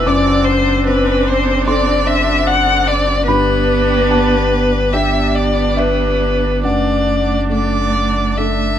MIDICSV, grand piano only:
0, 0, Header, 1, 2, 480
1, 0, Start_track
1, 0, Tempo, 802139
1, 37, Time_signature, 4, 2, 24, 8
1, 1476, Tempo, 821918
1, 2916, Tempo, 860832
1, 5066, End_track
2, 0, Start_track
2, 0, Title_t, "Grand piano"
2, 0, Program_c, 0, 0
2, 0, Control_c, 0, 64, 127
2, 39, Note_on_c, 0, 86, 81
2, 45, Note_on_c, 0, 42, 55
2, 47, Control_c, 0, 64, 0
2, 157, Control_c, 0, 64, 127
2, 523, Note_on_c, 0, 60, 51
2, 975, Note_off_c, 0, 86, 0
2, 1001, Note_on_c, 0, 62, 47
2, 1002, Note_on_c, 0, 84, 69
2, 1004, Note_on_c, 0, 69, 49
2, 1288, Note_off_c, 0, 60, 0
2, 1692, Note_off_c, 0, 84, 0
2, 1931, Note_off_c, 0, 62, 0
2, 1932, Note_off_c, 0, 69, 0
2, 1933, Note_off_c, 0, 42, 0
2, 1951, Note_on_c, 0, 83, 81
2, 1952, Note_on_c, 0, 43, 57
2, 1962, Control_c, 0, 64, 0
2, 2053, Control_c, 0, 64, 127
2, 2410, Note_off_c, 0, 83, 0
2, 2435, Note_on_c, 0, 81, 73
2, 2436, Note_on_c, 0, 59, 44
2, 2893, Note_off_c, 0, 81, 0
2, 2915, Note_on_c, 0, 62, 41
2, 2916, Note_on_c, 0, 67, 42
2, 2919, Note_on_c, 0, 79, 64
2, 3197, Note_off_c, 0, 59, 0
2, 3365, Note_off_c, 0, 79, 0
2, 3383, Note_on_c, 0, 76, 62
2, 3843, Note_off_c, 0, 76, 0
2, 3844, Note_off_c, 0, 43, 0
2, 3844, Note_off_c, 0, 62, 0
2, 3845, Note_off_c, 0, 67, 0
2, 3867, Note_on_c, 0, 42, 42
2, 3872, Note_on_c, 0, 78, 48
2, 3879, Control_c, 0, 64, 0
2, 3965, Control_c, 0, 64, 127
2, 4346, Note_on_c, 0, 57, 33
2, 4840, Note_on_c, 0, 62, 33
2, 4841, Note_on_c, 0, 69, 35
2, 5066, Note_off_c, 0, 42, 0
2, 5066, Note_off_c, 0, 57, 0
2, 5066, Note_off_c, 0, 62, 0
2, 5066, Note_off_c, 0, 69, 0
2, 5066, Note_off_c, 0, 78, 0
2, 5066, End_track
0, 0, End_of_file